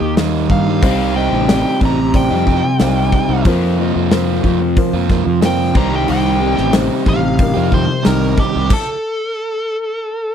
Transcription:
Already playing: D#3 A#3 D#4 G4
0.01 D#2, muted overdriven electric guitar stroke
0.17 D#3 G3 A#3 D#4, snare, open hi-hat
0.50 G2 F5, kick
0.66 G3 A#3 D#4
0.82 C2 C3 G3 C4 D#4 G4 C5 D#5, kick, open hi-hat
1.15 C3 G3 C4 D#4 G4 C5 D#5 G5
1.31 A1 G3 C4 D#4
1.47 C3 G3 C4 D#4 G4 C5 D5, snare, open hi-hat
1.81 A1 C3 G3 C4 D#4, kick
1.85 A#5
1.98 muted overdriven electric guitar stroke
2.14 G4 C5 D5 G5, kick, open hi-hat
2.30 F2 G3 C4 D#4
2.46 C3 G3 C4 D#4, kick
2.64 muted overdriven electric guitar stroke
2.79 C2 C3 G3 C4 D#4 G4 C5 F5, snare, open hi-hat
3.12 kick
3.29 C2 G3 C4 D#4
3.45 F2 C3 F3 A#3 C4 F4 A#4 C5, kick, open hi-hat
3.49 F3
3.78 F3 A#3 C4 F4 A#4 D#5
3.95 F2 A#3 C4 F4
4.11 F3 A#3 C4 F4 A#4 C5, snare, open hi-hat
4.44 F2 F3 A#3 C4 F4, kick
4.61 muted overdriven electric guitar stroke
4.77 F4 A#4 C5, kick, open hi-hat
4.93 F2 A#3 C4 F4
5.09 F3 A#3 C4 F4, kick, snare
5.26 F2, muted overdriven electric guitar stroke
5.41 F3 A#3 C4 F4 A#4 C5, snare, open hi-hat
5.46 G5
5.73 C2 C3 D#3 G3 C4 D#4 G4 C5 A#5, kick
5.90 G3 C4 G4
5.95 G5
6.06 C2 C3 D#3 G3 C4 G4 G5, open hi-hat
6.40 D#3 G3 C4 D#4 G4 C5
6.56 A1 G3 C4 G4, snare
6.73 C3 D#3 G3 C4 D#4 G4 C5, snare, open hi-hat
7.05 A1 D#3 G3 C4 G4, kick
7.09 F5
7.22 muted overdriven electric guitar stroke
7.38 D#4 G4 A#4, kick, open hi-hat
7.54 F2 G3 C4 G4
7.70 D#3 G3 C4 G4 C5, kick
7.87 muted overdriven electric guitar stroke
8.03 C2 C3 D#3 G3 C4 D#4 G4 A#4 D#5, snare, open hi-hat
8.38 G4, kick
8.52 C2 G3 C4 G4
8.70 A4, kick, crash

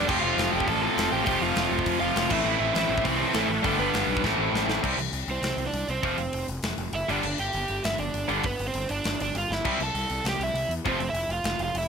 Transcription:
0.07 F1 F2 C3 F3 A3 C4 G4 G5, kick, crash
0.12 F4
0.21 F1 F4 F5
0.38 F1, snare, open hi-hat
0.53 F1 G4 G5
0.60 kick
0.67 A1 A4 A5, kick, open hi-hat
0.82 F2 C3 F3 A4 A5
0.96 F1 F2 C3 F3, snare, open hi-hat
1.11 A1 F3 A3 C4 F4 G4 G5
1.26 F1 F2 C3 F3 A3 C4 F4 G4 G5, kick, open hi-hat
1.42 F1 F4 F5
1.56 F1, snare, open hi-hat
1.71 F1
1.79 kick
1.86 F2, kick, open hi-hat
2.00 F1 F2 C3 F3 F4 F5
2.14 F1 F2 C3 F3, snare, open hi-hat
2.29 A1 A2 E3 A3 C4 E4 E5, kick, crash
2.34 E4
2.45 A1
2.60 A1 E4 E5
2.74 A1 E4 E5, snare, open hi-hat
2.89 A1
2.98 kick
3.04 C2 A2 E3 A3 C4 C5, kick, open hi-hat
3.18 A2 E3 A3
3.33 A1 A2 E3 A3 C4 A4, snare, open hi-hat
3.38 E4
3.48 A1
3.63 G1 G2 D3 G3 A3 B3 A4, kick, open hi-hat
3.67 D4
3.79 G1 B3 B4
3.94 G1, snare, open hi-hat
4.08 B1
4.17 kick
4.22 A1 A2 E3 A3 C4, kick, snare
4.26 E4
4.38 A1
4.52 A1, snare
4.67 A1, snare
4.83 C2 C3 E3 G3 C4 E4, kick, crash
4.98 C2, open hi-hat
5.13 C2, open hi-hat
5.28 C2 C4 C5, open hi-hat
5.42 C2, snare, open hi-hat
5.57 C2, open hi-hat
5.66 D4 D5
5.73 C2, open hi-hat
5.89 C2 C4 C5, open hi-hat
6.03 F1 F2 C3 F3 A3 C4 F4, kick, open hi-hat
6.18 F1, open hi-hat
6.33 F1, open hi-hat
6.48 F1, open hi-hat
6.63 F1, snare, open hi-hat
6.78 F1, open hi-hat
6.93 F#1 E4 E5, open hi-hat
7.09 G1 G2 D3 G3 B3 D4 D5, open hi-hat
7.23 G1, crash
7.38 G1 G4 G5, open hi-hat
7.53 G1, open hi-hat
7.68 G1, open hi-hat
7.84 G1 E4 E5, snare, open hi-hat
7.98 G1 D4 D5, open hi-hat
8.14 G1, open hi-hat
8.28 G1 G2 D3 G3 B3 D4, open hi-hat
8.43 G1 B3 B4, kick, open hi-hat
8.59 G1, open hi-hat
8.67 C4 C5
8.74 G1, open hi-hat
8.89 G1 D4 D5, open hi-hat
9.04 G1, snare, open hi-hat
9.20 G1 D4 D5, open hi-hat
9.34 G1 F4 F5, open hi-hat
9.50 G1 E4 E5, snare
9.65 C2 C3 G3 C4 E4, kick, crash, splash
9.80 C2 A4 A5, open hi-hat
9.94 C2, open hi-hat
10.10 C2, open hi-hat
10.24 C2 G4, snare, open hi-hat
10.29 G5
10.39 C2 E4, open hi-hat
10.44 E5
10.54 C2, open hi-hat
10.69 E2, open hi-hat
10.85 F1 F2 C3 F3 A3 C4 C5, kick, open hi-hat
10.99 F1, open hi-hat
11.09 E4 E5
11.13 F1, open hi-hat
11.29 F1 F4, open hi-hat
11.33 F5
11.44 F1, snare, open hi-hat
11.59 F1 F4, open hi-hat
11.64 F5
11.75 F1 E4 E5, open hi-hat

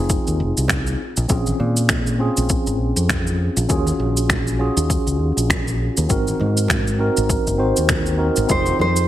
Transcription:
Already playing: F1 C4 D#4 F4 G#4
0.09 kick, cabasa
0.27 D#2, cabasa
0.40 F1
0.57 C2, cabasa
0.68 finger snap, kick, low conga, cabasa
0.87 cabasa
1.17 A#1, cabasa
1.28 A#1 C4 C#4 F4 G#4, kick, cabasa
1.46 high conga, cabasa
1.60 A#2, high conga
1.77 cabasa
1.89 finger snap, kick, low conga, cabasa
2.07 cabasa
2.19 C4 C#4 F4 G#4
2.37 A#1, cabasa
2.49 kick, cabasa
2.67 G#1, cabasa
2.79 A#1
2.96 F2, cabasa
3.09 finger snap, kick, low conga, cabasa
3.27 cabasa
3.57 A#1, cabasa
3.69 D#2 C#4 F4 F#4 G#4, kick, cabasa
3.86 high conga, cabasa
3.99 A#1, high conga
4.17 cabasa
4.29 finger snap, kick, low conga, cabasa
4.47 cabasa
4.59 C#4 F4 F#4 G#4
4.77 D#2, cabasa
4.90 kick, cabasa
5.07 C#2, cabasa
5.20 D#2
5.37 A#1, cabasa
5.50 finger snap, kick, low conga, cabasa
5.68 cabasa
5.97 D#2, cabasa
6.09 G#1 C4 D#4 F#4 A#4, kick, cabasa
6.27 high conga, cabasa
6.40 G#2, high conga
6.57 cabasa
6.68 finger snap, kick, low conga, cabasa
6.87 cabasa
6.99 C4 D#4 F#4 A#4
7.17 G#1, cabasa
7.30 kick, cabasa
7.47 F#1, cabasa
7.58 G#1 C4 D#4 F#4 C5
7.76 D#2, cabasa
7.89 finger snap, kick, low conga, cabasa
8.06 cabasa
8.18 C4 D#4 F#4 A#4
8.36 G#1, cabasa
8.47 F1 C4 D#4 F4 G#4 C5, kick, cabasa
8.66 high bongo, high conga, cabasa
8.79 F2 C5, high conga
8.96 cabasa

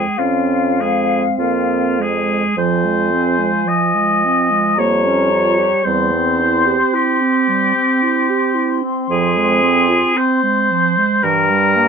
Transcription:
Already playing: G#3 G#4 G5
0.18 F2 C4 C#4 F4 F5
0.80 G#3 C4 G#4
1.39 F2 A#3 C4 F4
1.99 G#3 G#4
2.56 F2 F3 C5 G#5
2.85 G#3
3.11 C4
3.39 G#3
3.66 F3 D#5
3.94 G#3
4.25 C4
4.51 G#3
4.75 F2 G3 A#3 A#5
4.79 C#5
5.05 C#4
5.31 F4
5.58 G4
5.84 E2 G3 C4 C5 C6
6.12 C4
6.40 E4
6.66 G4
6.94 E4 G4
7.21 C4
7.48 G3
7.75 C4
8.03 E4
8.30 G4
8.55 E4
8.83 C4
9.09 F2 F3 G#4
9.36 G#3
9.62 C4
9.89 F4
10.16 C4 C5
10.43 G#3
10.71 F3
10.97 G#3
11.23 G2 E3 G3 A#4 A#5
11.50 G3
11.76 A#3

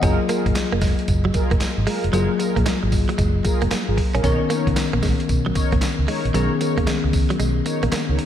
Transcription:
Already playing: D#5
0.02 F#1 F#3 A#3 C#4 F4 G#4 A#4, kick, closed hi-hat, tambourine
0.29 A#3 F4 G#4 A#4, closed hi-hat, tambourine
0.46 G#1, muted clean electric guitar stroke, kick, closed hi-hat
0.55 muted clean electric guitar stroke, snare, clap, closed hi-hat, tambourine
0.72 F1 A#3
0.81 G#3, kick, snare, open hi-hat, tambourine
0.99 closed hi-hat
1.08 F#1, kick, closed hi-hat, tambourine
1.25 F#3
1.34 F4 G#4 A#4, muted clean electric guitar stroke, kick, closed hi-hat, tambourine
1.51 F1 A#3, kick, closed hi-hat
1.61 muted fingered electric bass stroke, snare, clap, closed hi-hat, tambourine
1.78 G#1
1.87 G#3 F4 G#4 A#4, open hi-hat
2.04 F1, closed hi-hat
2.12 F#1 F#3 A#3 F4 G#4 A#4, closed hi-hat, tambourine
2.39 F4 G#4 A#4, muted clean electric guitar stroke, closed hi-hat, tambourine
2.56 A#1 A#3, kick, closed hi-hat
2.66 G#3, muted fingered electric bass stroke, snare, clap, closed hi-hat, tambourine
2.83 G#1, muted clean electric guitar stroke
2.92 kick, open hi-hat, tambourine
3.09 F#3, closed hi-hat
3.18 F#1 G#3, kick, closed hi-hat, tambourine
3.45 F4 G#4 A#4, muted clean electric guitar stroke, kick, closed hi-hat, tambourine
3.62 F1 A#3, closed hi-hat
3.71 A#3, snare, clap, closed hi-hat, tambourine
3.88 G#1 F4 G#4 A#4
3.97 muted clean electric guitar stroke, kick, open hi-hat
4.14 A#1 C#4 F4 G#4 A#4, closed hi-hat
4.23 B1 D#3 B3 C#4 D#4 A#4 C#5, kick, closed hi-hat, tambourine
4.50 A#3 D#4 A#4 C#5, closed hi-hat, tambourine
4.67 C#2, muted clean electric guitar stroke, kick, closed hi-hat
4.76 muted clean electric guitar stroke, muted fingered electric bass stroke, snare, clap, closed hi-hat, tambourine
4.93 A#1 A#3
5.03 G#3, kick, snare, open hi-hat, tambourine
5.20 closed hi-hat
5.29 B1, kick, closed hi-hat, tambourine
5.46 F#3
5.55 D#4 A#4 C#5, muted clean electric guitar stroke, kick, closed hi-hat, tambourine
5.72 A#1 A#3, kick, closed hi-hat
5.82 muted fingered electric bass stroke, snare, clap, closed hi-hat, tambourine
5.99 C#2
6.08 G#3 D#4 A#4 C#5, open hi-hat
6.25 A#1, closed hi-hat
6.33 B1 D#3 F#3 B3 C#4 D#4 G#4 A#4 C#5, closed hi-hat, tambourine
6.61 D#4 A#4 C#5, muted clean electric guitar stroke, closed hi-hat, tambourine
6.78 D#2 A#3, kick, closed hi-hat
6.87 G#3, muted fingered electric bass stroke, snare, clap, closed hi-hat, tambourine
7.04 C#2, muted clean electric guitar stroke
7.13 kick, open hi-hat, tambourine
7.30 F#3, closed hi-hat
7.40 B1 G#3, closed hi-hat, tambourine
7.66 D#4 A#4 C#5, muted clean electric guitar stroke, closed hi-hat, tambourine
7.83 A#1 A#3, closed hi-hat
7.92 A#3, muted fingered electric bass stroke, snare, clap, closed hi-hat, tambourine
8.09 C#2 D#4 A#4 C#5
8.19 muted clean electric guitar stroke, closed hi-hat

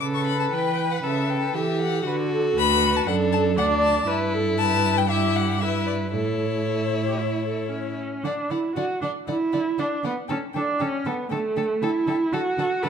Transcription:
0.00 C#3 A4 B4 D6
0.15 C#6
0.26 B5
0.40 A5
0.52 E3 B4 G5
0.91 F#5
1.04 C#3 A4 E5
1.30 G5
1.54 E3 G4 A4 E5
1.82 F#5
2.06 D3 F#4 B4
2.32 A4
2.57 D2 B4 B5
2.96 A5
3.07 F#2 D4 A4 F#5
3.33 A5
3.57 D2 D4 D5 F#5
3.83 A5
4.07 G2 E4 B4
4.34 A4
4.59 B4 A5
4.98 G5
5.09 E4 G4 E5
5.36 F#5
5.61 E4 B4 E5
5.87 D5
6.13 A2 E4 A4 C#5
6.66 A4
7.08 G4
7.19 E4
7.47 A4
7.71 C#4
8.24 D3 D4 D5 F#5
8.50 D3 E4 D5 F#5
8.76 D3 F#4 D5 F#5
9.01 D3 D4 D5 F#5
9.27 D3 E4 D5 F#5
9.53 D3 D5 F#5
9.78 D3 D4 D5 F#5
10.03 D3 B3 D5 F#5
10.28 D3 C#4 A4 G5
10.53 D3 D4 A4 G5
10.79 D3 C#4 A4 G5
11.05 D3 B3 A4 G5
11.30 D3 A3 A4 G5
11.56 D3 A4 G5
11.82 D3 E4 A4 G5
12.07 D3 A4 G5
12.33 D3 F#4 A4 F#5
12.58 D3 A4 F#5
12.83 D3 A4 B4 F#5

